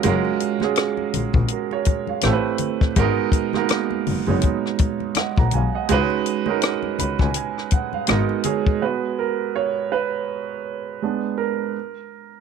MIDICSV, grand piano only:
0, 0, Header, 1, 2, 480
1, 0, Start_track
1, 0, Tempo, 731707
1, 25, Time_signature, 4, 2, 24, 8
1, 8136, End_track
2, 0, Start_track
2, 0, Title_t, "Grand piano"
2, 0, Program_c, 0, 0
2, 0, Control_c, 0, 64, 127
2, 0, Note_on_c, 0, 56, 71
2, 0, Note_on_c, 0, 61, 71
2, 0, Note_on_c, 0, 65, 65
2, 0, Note_on_c, 0, 66, 74
2, 0, Note_on_c, 0, 70, 87
2, 0, Note_on_c, 0, 73, 71
2, 24, Note_off_c, 0, 56, 0
2, 24, Note_on_c, 0, 56, 106
2, 30, Note_off_c, 0, 61, 0
2, 30, Note_on_c, 0, 61, 89
2, 34, Note_off_c, 0, 65, 0
2, 34, Note_on_c, 0, 65, 81
2, 40, Note_off_c, 0, 66, 0
2, 40, Note_on_c, 0, 66, 88
2, 43, Note_off_c, 0, 70, 0
2, 43, Note_on_c, 0, 70, 101
2, 348, Note_off_c, 0, 56, 0
2, 351, Note_off_c, 0, 61, 0
2, 353, Note_off_c, 0, 65, 0
2, 356, Note_off_c, 0, 66, 0
2, 358, Note_off_c, 0, 70, 0
2, 403, Note_on_c, 0, 56, 77
2, 407, Note_on_c, 0, 61, 67
2, 411, Note_on_c, 0, 65, 69
2, 416, Note_on_c, 0, 66, 67
2, 421, Note_on_c, 0, 68, 83
2, 988, Note_off_c, 0, 66, 0
2, 989, Note_off_c, 0, 65, 0
2, 993, Note_on_c, 0, 70, 52
2, 994, Note_off_c, 0, 68, 0
2, 998, Note_on_c, 0, 66, 53
2, 1119, Note_off_c, 0, 70, 0
2, 1122, Note_off_c, 0, 66, 0
2, 1131, Note_off_c, 0, 73, 0
2, 1131, Note_on_c, 0, 73, 76
2, 1136, Note_on_c, 0, 70, 59
2, 1222, Note_off_c, 0, 56, 0
2, 1224, Note_off_c, 0, 61, 0
2, 1355, Note_off_c, 0, 73, 0
2, 1357, Note_off_c, 0, 70, 0
2, 1370, Note_on_c, 0, 77, 63
2, 1373, Note_on_c, 0, 73, 54
2, 1466, Note_on_c, 0, 57, 85
2, 1471, Note_on_c, 0, 60, 75
2, 1475, Control_c, 0, 64, 0
2, 1476, Note_on_c, 0, 64, 70
2, 1480, Note_on_c, 0, 67, 77
2, 1485, Note_on_c, 0, 69, 77
2, 1523, Note_off_c, 0, 69, 0
2, 1527, Note_on_c, 0, 71, 86
2, 1594, Note_off_c, 0, 77, 0
2, 1596, Note_off_c, 0, 73, 0
2, 1603, Control_c, 0, 64, 127
2, 1892, Note_off_c, 0, 57, 0
2, 1894, Note_off_c, 0, 60, 0
2, 1897, Note_off_c, 0, 64, 0
2, 1899, Note_off_c, 0, 67, 0
2, 1923, Note_off_c, 0, 71, 0
2, 1946, Note_on_c, 0, 56, 97
2, 1950, Note_on_c, 0, 59, 90
2, 1952, Control_c, 0, 64, 0
2, 1954, Note_on_c, 0, 63, 93
2, 1960, Note_on_c, 0, 66, 87
2, 1965, Note_on_c, 0, 70, 108
2, 2064, Control_c, 0, 64, 127
2, 2269, Note_off_c, 0, 56, 0
2, 2271, Note_off_c, 0, 59, 0
2, 2273, Note_off_c, 0, 63, 0
2, 2276, Note_off_c, 0, 66, 0
2, 2279, Note_off_c, 0, 70, 0
2, 2323, Note_on_c, 0, 56, 74
2, 2328, Note_on_c, 0, 58, 59
2, 2332, Note_on_c, 0, 63, 73
2, 2337, Note_on_c, 0, 66, 71
2, 2342, Note_on_c, 0, 70, 93
2, 2361, Note_off_c, 0, 58, 0
2, 2370, Note_on_c, 0, 59, 68
2, 2731, Note_off_c, 0, 56, 0
2, 2736, Note_off_c, 0, 63, 0
2, 2739, Note_off_c, 0, 66, 0
2, 2741, Note_off_c, 0, 70, 0
2, 2755, Note_off_c, 0, 59, 0
2, 2801, Note_on_c, 0, 56, 69
2, 2807, Note_on_c, 0, 59, 63
2, 2810, Note_on_c, 0, 63, 66
2, 2816, Note_on_c, 0, 66, 60
2, 2821, Note_on_c, 0, 73, 76
2, 3393, Note_on_c, 0, 78, 59
2, 3396, Note_on_c, 0, 75, 52
2, 3519, Note_off_c, 0, 78, 0
2, 3521, Note_off_c, 0, 75, 0
2, 3531, Note_off_c, 0, 56, 0
2, 3531, Note_on_c, 0, 82, 61
2, 3534, Note_off_c, 0, 59, 0
2, 3536, Note_off_c, 0, 63, 0
2, 3536, Note_on_c, 0, 78, 55
2, 3539, Note_off_c, 0, 66, 0
2, 3541, Note_off_c, 0, 73, 0
2, 3624, Note_off_c, 0, 82, 0
2, 3627, Note_off_c, 0, 78, 0
2, 3634, Note_on_c, 0, 80, 61
2, 3639, Note_on_c, 0, 77, 52
2, 3760, Note_off_c, 0, 80, 0
2, 3762, Note_off_c, 0, 77, 0
2, 3771, Note_on_c, 0, 78, 64
2, 3774, Note_on_c, 0, 75, 55
2, 3863, Note_on_c, 0, 56, 98
2, 3868, Note_on_c, 0, 61, 89
2, 3872, Note_on_c, 0, 63, 88
2, 3874, Control_c, 0, 64, 0
2, 3878, Note_on_c, 0, 66, 95
2, 3882, Note_on_c, 0, 71, 111
2, 3994, Note_off_c, 0, 78, 0
2, 3996, Note_off_c, 0, 75, 0
2, 4000, Control_c, 0, 64, 127
2, 4188, Note_off_c, 0, 56, 0
2, 4190, Note_off_c, 0, 61, 0
2, 4192, Note_off_c, 0, 63, 0
2, 4195, Note_off_c, 0, 66, 0
2, 4197, Note_off_c, 0, 71, 0
2, 4238, Note_on_c, 0, 56, 75
2, 4243, Note_on_c, 0, 61, 73
2, 4247, Note_on_c, 0, 63, 73
2, 4253, Note_on_c, 0, 66, 73
2, 4259, Note_on_c, 0, 70, 89
2, 4590, Note_on_c, 0, 83, 63
2, 4715, Note_off_c, 0, 83, 0
2, 4729, Note_on_c, 0, 80, 61
2, 4821, Note_off_c, 0, 80, 0
2, 4831, Note_on_c, 0, 80, 65
2, 5051, Note_off_c, 0, 80, 0
2, 5060, Note_off_c, 0, 56, 0
2, 5062, Note_off_c, 0, 61, 0
2, 5064, Note_off_c, 0, 63, 0
2, 5067, Note_off_c, 0, 66, 0
2, 5070, Note_off_c, 0, 70, 0
2, 5075, Note_on_c, 0, 78, 64
2, 5197, Note_off_c, 0, 78, 0
2, 5207, Note_on_c, 0, 77, 67
2, 5299, Note_on_c, 0, 56, 76
2, 5301, Note_off_c, 0, 77, 0
2, 5303, Note_on_c, 0, 59, 71
2, 5305, Note_on_c, 0, 66, 75
2, 5308, Note_on_c, 0, 63, 75
2, 5309, Note_on_c, 0, 75, 60
2, 5312, Control_c, 0, 64, 0
2, 5318, Note_on_c, 0, 70, 80
2, 5421, Control_c, 0, 64, 127
2, 5530, Note_off_c, 0, 75, 0
2, 5545, Note_on_c, 0, 68, 78
2, 5549, Note_on_c, 0, 73, 68
2, 5729, Note_off_c, 0, 56, 0
2, 5731, Note_off_c, 0, 59, 0
2, 5733, Note_off_c, 0, 63, 0
2, 5736, Note_off_c, 0, 66, 0
2, 5738, Note_off_c, 0, 70, 0
2, 5770, Note_off_c, 0, 73, 0
2, 5787, Note_on_c, 0, 71, 74
2, 5788, Note_on_c, 0, 56, 43
2, 5792, Note_off_c, 0, 68, 0
2, 5792, Control_c, 0, 64, 0
2, 5792, Note_on_c, 0, 59, 38
2, 5796, Note_on_c, 0, 66, 47
2, 5917, Control_c, 0, 64, 127
2, 6027, Note_on_c, 0, 70, 68
2, 6033, Note_off_c, 0, 71, 0
2, 6268, Note_on_c, 0, 73, 72
2, 6273, Note_off_c, 0, 70, 0
2, 6490, Note_off_c, 0, 73, 0
2, 6507, Note_on_c, 0, 71, 73
2, 7200, Note_off_c, 0, 56, 0
2, 7202, Note_off_c, 0, 59, 0
2, 7204, Note_off_c, 0, 66, 0
2, 7231, Note_on_c, 0, 56, 38
2, 7233, Note_on_c, 0, 59, 41
2, 7234, Control_c, 0, 64, 0
2, 7238, Note_on_c, 0, 62, 45
2, 7337, Control_c, 0, 64, 127
2, 7462, Note_on_c, 0, 70, 65
2, 7495, Note_off_c, 0, 71, 0
2, 7684, Note_off_c, 0, 56, 0
2, 7685, Note_off_c, 0, 59, 0
2, 7688, Note_off_c, 0, 62, 0
2, 7712, Control_c, 0, 64, 0
2, 7819, Control_c, 0, 64, 127
2, 8136, Note_off_c, 0, 70, 0
2, 8136, End_track
0, 0, End_of_file